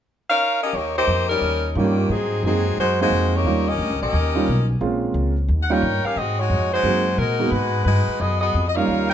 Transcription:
0.30 0.60 D#4 medium
0.30 0.60 A#4 medium
0.30 0.61 C#5 medium
0.30 0.60 F5 loud
0.63 0.74 C#4 medium
0.63 0.74 G4 medium
0.63 0.74 A#4 medium
0.63 0.74 D#5 medium
0.73 1.07 D#2 medium
0.73 0.96 A#3 medium
0.73 0.96 D#4 medium
0.73 0.96 G4 medium
0.73 0.96 C#5 medium
0.97 1.28 A#3 medium
0.97 1.28 D#4 medium
0.97 1.28 G4 medium
0.97 1.28 C5 medium
1.07 1.41 F2 medium
1.29 1.73 G3 medium
1.29 1.72 C#4 medium
1.29 1.72 D#4 medium
1.29 1.72 A#4 medium
1.41 1.75 D#2 medium
1.75 2.08 G2 medium
1.75 2.10 D#3 medium
1.75 2.10 G3 medium
1.75 2.10 A#3 medium
1.75 2.10 A#3 soft
1.75 2.10 C#4 medium
1.75 2.10 C#4 soft
1.75 2.10 D#4 soft
1.75 2.10 F4 medium
1.75 2.10 G4 medium
2.09 2.42 G#2 medium
2.09 2.44 F#3 medium
2.09 2.44 C4 medium
2.09 2.44 D#4 medium
2.09 2.44 G#4 medium
2.43 2.76 F#2 medium
2.43 2.76 F#3 medium
2.43 2.64 G#3 soft
2.43 2.64 A#3 soft
2.43 2.64 C4 soft
2.43 2.76 C4 medium
2.43 2.76 D#4 medium
2.43 2.64 D#4 soft
2.43 2.64 F#4 medium
2.43 2.76 G#4 medium
2.77 3.09 F#2 medium
2.77 2.98 G#3 medium
2.77 2.98 D#4 medium
2.77 2.98 F#4 medium
2.77 2.99 C5 medium
3.01 3.44 G#3 medium
3.01 3.32 G#3 medium
3.01 3.44 A#3 soft
3.01 3.44 C4 soft
3.01 3.32 D#4 medium
3.01 3.44 D#4 soft
3.01 3.32 F#4 medium
3.01 3.32 C5 medium
3.01 3.44 F5 medium
3.10 3.44 F2 medium
3.34 3.68 A#3 medium
3.34 3.68 D#4 medium
3.34 3.66 G4 medium
3.34 3.68 C#5 medium
3.45 3.78 D#2 medium
3.45 3.65 G3 medium
3.45 3.65 A#3 soft
3.45 3.66 C#4 soft
3.45 3.65 D#4 soft
3.45 3.66 F4 medium
3.67 4.01 C#4 medium
3.67 4.00 G4 medium
3.67 4.01 A#4 medium
3.67 4.01 D#5 medium
3.78 3.90 D2 medium
3.90 4.01 C#2 medium
4.01 4.12 A#1 medium
4.01 4.66 C#4 medium
4.01 4.65 G4 medium
4.01 4.66 A#4 medium
4.01 4.65 D#5 medium
4.13 4.46 D#2 medium
4.35 4.46 G3 medium
4.35 4.46 A#3 medium
4.35 4.46 C#4 medium
4.35 4.46 D#4 medium
4.35 4.46 F4 medium
4.48 4.80 B1 medium
4.81 5.14 A#1 medium
4.81 5.32 G#3 medium
4.81 5.32 A#3 soft
4.81 5.32 C4 medium
4.81 5.32 C#4 medium
4.81 5.32 F4 medium
5.14 5.47 C#2 medium
5.49 5.82 D#2 medium
5.63 5.71 F#5 medium
5.70 5.81 G3 medium
5.70 5.81 A#3 medium
5.70 5.81 C#4 medium
5.70 5.81 D#4 medium
5.70 6.05 D#4 medium
5.70 5.81 F4 medium
5.70 6.04 A#4 medium
5.70 6.05 C#5 medium
5.70 6.05 G5 medium
5.82 6.03 G2 medium
6.04 6.17 C#4 medium
6.04 6.17 G4 medium
6.04 6.17 A#4 medium
6.04 6.17 F5 medium
6.04 muted upright bass stroke soft
6.16 6.49 G#2 medium
6.16 6.39 C4 medium
6.16 6.38 F#4 medium
6.16 6.39 G#4 medium
6.16 6.39 D#5 medium
6.39 6.71 G#3 medium
6.39 6.71 D#4 medium
6.39 6.71 F#4 medium
6.39 6.73 C#5 medium
6.50 6.83 F2 medium
6.72 7.15 G#3 medium
6.72 7.15 D#4 medium
6.72 7.15 F#4 medium
6.72 7.15 C5 medium
6.83 7.17 F#2 medium
6.83 7.04 G#3 soft
6.83 7.04 A#3 soft
6.83 7.04 C4 soft
6.83 7.04 D#4 soft
6.83 7.04 F#4 soft
7.18 7.51 A#2 medium
7.18 7.50 G#3 medium
7.18 7.50 D#4 medium
7.18 7.50 F#4 medium
7.18 7.52 A#4 medium
7.39 7.51 G#3 medium
7.39 7.51 A#3 soft
7.39 7.51 B3 medium
7.39 7.51 D#4 soft
7.39 7.51 F#4 medium
7.51 7.85 G#2 medium
7.51 7.84 G#3 medium
7.51 7.84 D#4 medium
7.51 7.84 F#4 medium
7.51 7.84 B4 medium
7.85 8.06 G2 medium
7.85 8.17 G#3 medium
7.85 8.17 D#4 medium
7.85 8.17 F#4 medium
7.85 8.17 B4 medium
8.08 muted upright bass stroke soft
8.20 8.53 F#2 medium
8.20 8.40 B3 medium
8.20 8.40 F#4 medium
8.20 8.40 G#4 medium
8.20 8.40 D#5 medium
8.41 8.65 B3 medium
8.41 8.65 F#4 medium
8.41 8.65 G#4 medium
8.41 8.65 D#5 medium
8.54 8.87 F2 medium
8.68 8.77 D#5 medium
8.74 9.14 G3 medium
8.74 9.14 A#3 medium
8.74 9.14 C#4 medium
8.74 9.08 D#4 medium
8.74 9.14 D#4 medium
8.74 9.14 F4 medium
8.74 9.09 A#4 medium
8.74 9.08 C#5 medium
8.74 9.09 F5 medium
8.88 9.14 D#2 medium
9.10 9.14 D#4 medium
9.10 9.14 A#4 medium
9.10 9.14 C#5 medium
9.10 9.14 G5 medium

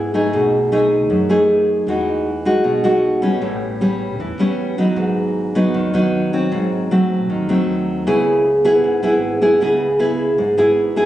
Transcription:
0.00 0.29 G#1 medium
0.00 0.31 G#2 medium
0.00 0.11 B3 medium
0.00 0.11 E4 medium
0.00 0.11 G#4 medium
0.14 0.69 A3 medium
0.14 0.69 D#4 medium
0.14 0.69 G#4 soft
0.33 1.10 B1 medium
0.33 1.09 B2 medium
0.72 1.27 A3 soft
0.72 1.27 D#4 soft
0.72 1.27 G#4 medium
1.10 1.85 F#2 medium
1.10 1.28 F#2 medium
1.29 1.84 F#2 medium
1.29 1.84 A3 medium
1.29 1.85 D#4 medium
1.29 1.85 G#4 medium
1.87 2.64 E2 medium
1.87 2.63 E3 medium
1.87 2.26 G#3 medium
1.87 2.27 D#4 medium
1.87 2.27 F#4 medium
2.45 2.81 G#3 medium
2.45 2.81 D#4 medium
2.45 2.81 F#4 medium
2.64 2.83 B1 medium
2.64 3.40 B2 medium
2.84 3.38 B1 medium
2.84 3.20 G#3 medium
2.84 3.20 D#4 medium
2.84 3.20 F#4 medium
3.22 3.77 G3 medium
3.22 3.78 B3 medium
3.22 3.78 C#4 medium
3.42 4.19 A1 medium
3.42 4.18 A2 medium
3.81 4.19 G3 soft
3.81 4.20 B3 soft
3.81 4.20 C#4 medium
4.19 4.37 E2 medium
4.19 4.95 E3 medium
4.38 4.92 E2 medium
4.38 4.75 G3 medium
4.38 4.75 B3 medium
4.38 4.75 C#4 medium
4.78 5.52 F#3 medium
4.78 5.52 B3 medium
4.78 5.52 D#4 medium
4.96 5.76 G#1 medium
4.96 5.72 G#2 medium
5.55 5.91 F#3 medium
5.55 5.91 B3 medium
5.55 5.91 D#4 medium
5.74 5.92 D#2 medium
5.74 6.50 D#3 medium
5.93 6.47 D#2 medium
5.93 6.29 F#3 medium
5.93 6.29 B3 medium
5.93 6.30 D#4 medium
6.33 6.87 F#3 medium
6.33 6.88 C4 medium
6.52 7.29 G#1 medium
6.52 7.27 G#2 medium
6.91 7.46 F#3 medium
6.91 7.46 A3 medium
6.91 7.46 C4 medium
7.29 7.47 D#2 medium
7.29 8.05 D#3 medium
7.49 8.02 D#2 medium
7.49 8.03 F#3 medium
7.49 8.04 A3 medium
7.49 8.04 C4 medium
8.07 8.83 C#2 medium
8.07 8.82 C#3 medium
8.07 8.45 B3 medium
8.07 8.45 E4 medium
8.07 8.45 G#4 medium
8.65 9.00 B3 medium
8.65 9.00 E4 medium
8.65 9.00 G#4 medium
8.83 9.01 G#1 medium
8.83 9.59 G#2 medium
9.03 9.57 G#1 medium
9.03 9.38 B3 medium
9.03 9.39 E4 medium
9.03 9.39 G#4 medium
9.42 9.58 B3 medium
9.42 9.58 E4 medium
9.42 9.58 G#4 medium
9.60 10.38 C#2 medium
9.60 10.36 C#3 medium
9.60 9.86 B3 medium
9.60 9.86 E4 medium
9.60 9.86 G#4 medium
9.99 10.38 B3 medium
9.99 10.38 E4 medium
9.99 10.38 G#4 medium
10.38 10.56 G#1 loud
10.38 11.05 G#2 medium
10.58 11.05 G#1 medium
10.58 10.93 B3 medium
10.58 10.93 E4 medium
10.58 10.94 G#4 medium
10.96 11.05 B3 medium
10.96 11.05 E4 medium
10.96 11.05 G#4 medium

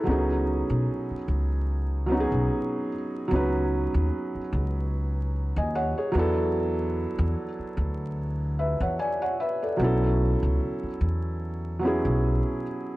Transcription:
0.00 1.12 F#3 medium
0.00 0.28 E4 soft
0.00 0.27 A4 medium
0.05 0.61 C#2 medium
0.05 1.13 B3 medium
0.05 1.14 C#4 medium
0.05 1.15 D#4 medium
0.11 1.16 G#4 medium
0.70 0.85 B1 medium
1.10 muted upright bass stroke soft
1.28 2.27 C#2 medium
2.06 2.87 F#3 medium
2.06 2.88 B3 medium
2.06 2.89 C#4 medium
2.12 2.90 D#4 medium
2.12 2.18 F#4 medium
2.20 2.94 G#4 medium
2.32 2.47 B1 medium
3.28 3.86 C#2 medium
3.28 4.37 F#3 medium
3.28 4.38 B3 medium
3.28 4.38 C#4 medium
3.34 4.39 D#4 medium
3.34 4.40 B4 medium
3.94 4.09 D#2 medium
4.35 muted upright bass stroke soft
4.53 5.52 C#2 loud
5.56 5.91 D#2 medium
5.56 5.74 D#5 medium
5.56 5.73 G#5 medium
5.75 5.96 C#5 medium
5.75 5.96 F#5 medium
5.98 6.36 G#4 soft
5.98 6.35 C#5 medium
6.12 7.05 E2 medium
6.12 7.43 F#3 medium
6.12 7.44 B3 medium
6.12 7.45 D4 medium
6.17 7.46 E4 medium
6.17 7.47 A4 loud
7.19 7.34 E2 loud
7.59 muted upright bass stroke soft
7.77 8.76 D2 medium
8.59 8.80 B4 medium
8.59 8.80 E5 medium
8.80 8.96 E2 medium
8.80 8.98 C#5 medium
8.80 8.98 F#5 medium
8.99 9.20 D5 medium
8.99 9.20 G#5 medium
9.22 9.39 C#5 medium
9.22 9.38 F#5 medium
9.40 9.61 B4 medium
9.40 9.61 E5 medium
9.62 9.83 A4 soft
9.62 10.00 D5 medium
9.77 10.34 B1 loud
9.77 10.85 F#3 medium
9.77 10.86 B3 medium
9.77 10.87 C#4 medium
9.82 10.88 E4 medium
9.82 10.89 A4 medium
10.43 10.58 C#2 medium
10.83 muted upright bass stroke soft
11.01 12.00 E2 medium
11.79 12.60 F#3 medium
11.79 12.61 B3 medium
11.79 12.62 C#4 medium
11.85 12.63 E4 medium
11.85 12.64 G#4 medium
12.05 12.40 B1 medium

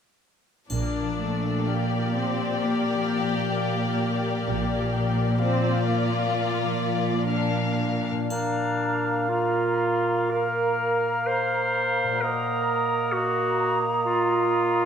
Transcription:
0.70 1.62 A#1 soft
0.70 4.46 A#2 soft
0.70 4.43 A#2 soft
0.70 1.15 A#3 soft
0.70 1.62 D4 soft
0.70 5.35 D5 soft
0.70 triangle soft
1.02 2.93 F3 soft
1.20 1.66 A3 soft
1.34 2.29 D5 soft
1.65 2.15 A#3 soft
1.65 5.39 G4 soft
1.65 3.55 F5 soft
1.98 3.85 F4 soft
2.15 2.63 C4 soft
2.30 3.23 D5 soft
2.62 6.33 A#3 soft
2.62 3.55 A#3 soft
2.94 4.77 F3 soft
3.24 4.16 D5 soft
3.56 5.36 A#3 soft
3.56 5.38 F5 soft
3.87 5.69 F4 soft
4.17 5.07 D5 soft
4.46 5.35 A#1 soft
4.46 8.04 A#2 soft
4.46 8.10 A#2 soft
4.78 6.63 F3 soft
5.08 6.01 D5 soft
5.39 5.86 C4 soft
5.39 7.29 F4 soft
5.39 7.25 D5 soft
5.39 7.28 F5 soft
5.71 7.61 F4 soft
5.87 7.26 A#3 soft
6.02 6.96 D5 soft
6.34 8.15 A#3 soft
6.64 10.54 F3 soft
6.97 7.95 D5 soft
7.28 8.08 A#3 soft
7.28 8.07 D4 soft
7.28 11.19 F5 soft
7.28 8.08 F5 soft
7.62 8.19 F4 soft
7.96 8.23 D5 soft
8.11 12.01 A#2 soft
8.16 12.06 A#3 soft
8.20 12.10 F4 soft
8.25 12.15 D5 soft
8.29 12.19 A#3 soft
8.29 9.30 D4 soft
8.29 9.26 F5 soft
8.29 9.25 A#5 soft
8.29 triangle soft
9.29 10.32 F4 soft
9.29 10.30 F5 soft
9.29 10.29 A#5 soft
10.31 11.28 A#4 medium
10.31 12.25 F5 soft
10.31 12.20 A#5 soft
11.27 12.23 C5 medium
12.04 14.85 A#2 soft
12.08 14.85 A#3 soft
12.13 14.85 F#4 soft
12.18 13.14 A#4 medium
12.18 14.85 D#5 soft
12.23 14.85 A#3 soft
12.23 13.15 D#5 soft
12.23 13.13 A#5 soft
13.12 13.89 F#4 medium
13.12 14.85 D#5 soft
13.12 14.85 A#5 soft
14.06 14.85 F4 medium

